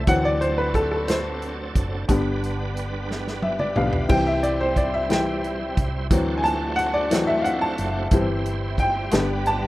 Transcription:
Already playing: string section A3
0.07 fingered electric bass D2, upright piano E3 F#3 C4 F#5, tonewheel organ F#3 C4 D4 A4, string section C4 D4 F#4, kick, closed hi-hat
0.25 upright piano D5
0.41 upright piano C5, closed hi-hat
0.58 upright piano B4
0.74 upright piano A4, kick, closed hi-hat
0.92 upright piano A4
1.08 upright piano C5, snare, closed hi-hat
1.42 closed hi-hat
1.75 fingered electric bass F#1, kick, closed hi-hat
2.08 fingered electric bass G1, upright piano D3 G3 B3, tonewheel organ G3 B3 D4 A#4, string section G3 B3 G4, kick, closed hi-hat
2.15 tonewheel organ B4
2.44 closed hi-hat
2.77 closed hi-hat
3.11 snare
3.28 snare
3.42 upright piano E5, high tom
3.59 upright piano D5, mid tom
3.76 fingered electric bass B1, upright piano D3 G3 B3 F5, mid tom
3.93 floor tom
4.09 fingered electric bass C2, upright piano E3 G3 C4 G5, string section G3 C4 E4, tonewheel organ G3 C4 E4 C5, kick, crash
4.27 upright piano E5
4.43 upright piano D5, closed hi-hat
4.60 upright piano C5
4.76 upright piano D5, kick, closed hi-hat
4.94 upright piano E5
5.09 upright piano E3 G3 C4 G5, snare, closed hi-hat
5.44 closed hi-hat
5.77 fingered electric bass C2, kick, closed hi-hat
6.11 fingered electric bass D2, upright piano E3 F#3 C4, tonewheel organ A3 D4 F#4 C5, string section A3 C4 D4 F#4, kick, closed hi-hat
6.38 upright piano G#5
6.44 upright piano A5, closed hi-hat
6.76 upright piano F#5, closed hi-hat
6.94 upright piano D5
7.11 upright piano E3 F#3 C4, snare, closed hi-hat
7.27 upright piano E5
7.42 upright piano F5 F#5, closed hi-hat
7.61 upright piano A5
7.78 fingered electric bass F#1, closed hi-hat
8.11 fingered electric bass G1, upright piano E3 G3 C4, string section G3 E4 G4, tonewheel organ G3 C4 E4 C5, kick, closed hi-hat
8.46 closed hi-hat
8.78 upright piano G5, kick, closed hi-hat
9.11 fingered electric bass G1, upright piano D3 G3 B3, tonewheel organ G3 B3 D4 A4, string section B3 D4, snare, closed hi-hat
9.20 tonewheel organ B4
9.46 upright piano A5, closed hi-hat

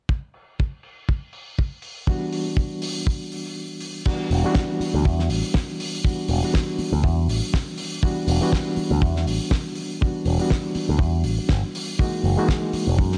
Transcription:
0.09 kick
0.34 open hi-hat
0.60 kick
0.83 open hi-hat
1.09 kick
1.33 open hi-hat
1.59 kick
1.82 open hi-hat
2.07 reed electric piano E3 G3 B3 D4 F#4, kick
2.33 open hi-hat
2.57 kick
2.82 open hi-hat
3.07 kick
3.32 open hi-hat
3.45 open hi-hat
3.80 open hi-hat
4.05 reed electric piano E3 G3 B3 D4 F#4, kick, crash
4.31 picked electric bass E1, open hi-hat
4.44 reed electric piano E3 G3 B3 D4 F#4
4.55 kick, snare
4.80 muted picked electric bass stroke, open hi-hat
4.94 picked electric bass D2
5.05 picked electric bass E2, kick
5.19 snare
5.30 picked electric bass A1, open hi-hat
5.54 kick, snare
5.80 open hi-hat
6.04 reed electric piano E3 G3 B3 D4 F#4, kick
6.28 picked electric bass E1, open hi-hat
6.42 reed electric piano E3 G3 B3 D4 F#4, open hi-hat
6.54 kick, snare
6.78 muted picked electric bass stroke, open hi-hat
6.92 picked electric bass D2
7.04 picked electric bass E2, kick
7.28 picked electric bass A1, open hi-hat
7.54 kick, snare
7.78 open hi-hat
8.03 reed electric piano E3 G3 B3 D4 F#4, kick
8.28 picked electric bass E1, open hi-hat
8.41 reed electric piano E3 G3 B3 D4 F#4
8.53 kick, snare
8.76 muted picked electric bass stroke, open hi-hat
8.91 picked electric bass D2
9.02 picked electric bass E2, kick
9.16 snare
9.27 picked electric bass A1, open hi-hat
9.51 kick, snare
9.76 open hi-hat
10.01 reed electric piano E3 G3 B3 D4 F#4, kick
10.26 picked electric bass E1, open hi-hat
10.39 reed electric piano E3 G3 B3 D4 F#4, open hi-hat
10.50 kick, snare
10.75 muted picked electric bass stroke, open hi-hat
10.89 picked electric bass D2
10.99 picked electric bass E2, kick
11.24 picked electric bass A1, open hi-hat
11.38 muted picked electric bass stroke
11.49 picked electric bass G1, kick, snare
11.75 open hi-hat
11.99 reed electric piano E3 G#3 A#3 D#4 F#4, kick
12.24 picked electric bass F#1, open hi-hat
12.37 reed electric piano E3 G#3 A#3 D#4 F#4
12.49 kick, snare
12.73 muted picked electric bass stroke, open hi-hat
12.87 picked electric bass E1
12.98 picked electric bass F#2, kick
13.12 snare

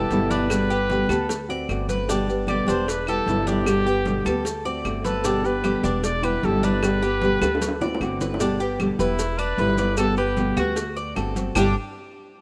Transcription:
Already playing: nylon-string guitar G3 B3, cuban tres G4, trumpet A4
0.11 upright bass G1, nylon-string guitar B2 D3 G3 B3 E4, cowbell, high conga, maracas
0.30 cuban tres D4, trumpet B4, cowbell, high conga, maracas
0.50 nylon-string guitar B2 D3 G3 B3 G4, cowbell, high conga, claves, maracas
0.70 nylon-string guitar G3 B3 G4, cuban tres G4, high conga, maracas
0.89 nylon-string guitar B2 D3 G3 B3 G4, cowbell, high conga, maracas
1.09 upright bass D2, nylon-string guitar G3 B3 G4, cuban tres A4, cowbell, high conga, low conga, claves, maracas
1.29 muted nylon-string guitar stroke, cowbell, high conga, maracas
1.49 nylon-string guitar A3 C4 F#4, cuban tres D5, high conga, maracas
1.69 upright bass G1, nylon-string guitar D3 A3 C4 F#4, cowbell, high conga, claves, maracas
1.89 cuban tres B4, cowbell, high conga, maracas
2.08 nylon-string guitar B2 D3 G3 B3 G4, cuban tres D4, cowbell, high conga, maracas
2.27 nylon-string guitar G3 B3 G4, high conga, maracas
2.47 nylon-string guitar B2 D3 G3 B3 G4, cuban tres G4, trumpet D5, cowbell, high conga, claves, maracas
2.67 upright bass E1, nylon-string guitar G3 B3 G4, cuban tres D4, trumpet C5, cowbell, high conga, maracas
2.87 trumpet B4, muted nylon-string guitar stroke, cowbell, high conga, maracas
3.07 nylon-string guitar G3 B3 E4, cuban tres G4, trumpet A4, high conga, claves, maracas
3.26 upright bass G1, nylon-string guitar B2 D3 G3 B3 E4, cowbell, high conga, maracas
3.46 cuban tres D4, trumpet G4, cowbell, high conga, maracas
3.66 nylon-string guitar B2 D3 G3 B3 G4, cowbell, claves, maracas
3.86 nylon-string guitar G3 B3 G4, cuban tres G4, high conga, maracas
4.05 nylon-string guitar B2 D3 G3 B3 G4, cowbell, high conga, maracas
4.25 upright bass D2, nylon-string guitar G3 B3 G4, cuban tres A4, cowbell, high conga, low conga, claves, maracas
4.45 muted nylon-string guitar stroke, cowbell, high conga, maracas
4.65 nylon-string guitar A3 C4 F#4, cuban tres D5, high conga, maracas
4.85 upright bass G1, nylon-string guitar D3 A3 C4 F#4, cowbell, high conga, claves, maracas
5.04 trumpet A4, cuban tres B4, cowbell, high conga, maracas
5.24 nylon-string guitar B2 D3 G3 B3 G4, cuban tres D4, cowbell, high conga, maracas
5.44 nylon-string guitar G3 B3 G4, trumpet B4, high conga, maracas
5.63 nylon-string guitar B2 D3 G3 B3 G4, cuban tres G4, cowbell, high conga, claves, maracas
5.83 upright bass E1, nylon-string guitar G3 B3 G4, cuban tres D4, cowbell, high conga, maracas
6.03 trumpet D5, muted nylon-string guitar stroke, cowbell, high conga, maracas
6.22 nylon-string guitar G3 B3 E4, cuban tres G4, trumpet B4, high conga, claves, maracas
6.43 upright bass G1, nylon-string guitar B2 D3 G3 B3 E4, trumpet A4, cowbell, high conga, maracas
6.63 cuban tres D4, trumpet B4, cowbell, high conga, maracas
6.82 nylon-string guitar B2 D3 G3 B3 G4, cowbell, claves, maracas
7.02 nylon-string guitar G3 B3 G4, cuban tres G4, high conga, maracas
7.21 nylon-string guitar B2 D3 G3 B3 G4, cowbell, high conga, maracas
7.41 upright bass D2, nylon-string guitar G3 B3 G4, cuban tres A4, cowbell, high bongo, high conga, claves, maracas
7.55 high bongo
7.61 muted nylon-string guitar stroke, cowbell, high conga, maracas
7.68 high bongo
7.81 nylon-string guitar A3 C4 F#4, cuban tres D5, low bongo, low conga, maracas
7.95 low bongo
8.00 upright bass G1, nylon-string guitar D3 A3 C4 F#4, cowbell, claves, maracas
8.20 cuban tres B4, cowbell, low bongo, low conga, maracas
8.34 low bongo
8.39 nylon-string guitar B2 D3 G3 B3 G4, cuban tres D4, cowbell, high conga, maracas
8.59 nylon-string guitar G3 B3 G4, cuban tres G4, high conga, maracas
8.79 nylon-string guitar B2 D3 G3 B3 G4, cowbell, high conga, claves, maracas
8.98 upright bass E1, nylon-string guitar G3 B3 G4, trumpet E4, cuban tres B4, cowbell, high conga, maracas
9.19 muted nylon-string guitar stroke, cowbell, high conga, maracas
9.38 cuban tres D4, trumpet B4, high conga, claves, maracas
9.57 upright bass G1, nylon-string guitar B2 D3 G3 B3 E4, cuban tres B4, cowbell, high conga, maracas
9.77 nylon-string guitar G3 B3 E4, cuban tres D5, cowbell, high conga, maracas
9.97 nylon-string guitar B2 D3 G3 B3 G4, trumpet A4, cowbell, claves, maracas
10.17 nylon-string guitar G3 B3 G4, trumpet G4, cuban tres B4, high conga, maracas
10.37 nylon-string guitar B2 D3 G3 B3 G4, cowbell, high conga, maracas
10.57 upright bass D2, nylon-string guitar G3 B3 G4, cuban tres F#4, trumpet F#4, cowbell, high conga, low conga, claves, maracas
10.76 muted nylon-string guitar stroke, cowbell, high conga, maracas
10.96 cuban tres D5, high conga, maracas
11.15 upright bass G1, nylon-string guitar D3 A3 C4 F#4, cuban tres A4, cowbell, high conga, claves, maracas
11.36 nylon-string guitar A3 C4 F#4, cowbell, high conga, maracas
11.55 upright bass G1, nylon-string guitar G2 B2 D3 G3 B3 G4, cuban tres G3 D4 G4, violin section D4, trumpet D4, low bongo, low conga, claves, maracas

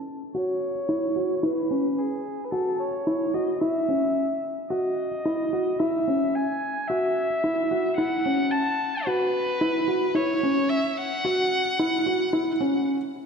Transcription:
0.35 felt piano F#4, violin C#5
0.89 felt piano E4
1.16 felt piano F#4
1.43 felt piano E4, violin B4
1.71 felt piano C#4
1.98 violin G#4
2.45 violin B4
2.51 felt piano F#4, violin A4
2.80 violin C#5
3.07 felt piano E4
3.34 felt piano F#4, violin D#5
3.60 felt piano E4, violin E5
3.88 felt piano C#4
4.70 felt piano F#4, violin D#5
5.25 felt piano E4
5.53 felt piano F#4
5.79 felt piano E4, violin E5
6.08 felt piano C#4
6.35 violin G#5
6.88 felt piano F#4, violin E5
7.44 felt piano E4
7.71 felt piano F#4
7.96 felt piano E4, violin F#5
8.26 felt piano C#4
8.51 violin A5
9.06 felt piano F#4, violin B4
9.61 felt piano E4
9.88 felt piano F#4
10.15 felt piano E4, violin C#5
10.43 felt piano C#4
10.69 violin E5
10.98 violin F#5
11.25 felt piano F#4
11.79 felt piano E4
12.06 felt piano F#4
12.33 felt piano E4
12.61 felt piano C#4

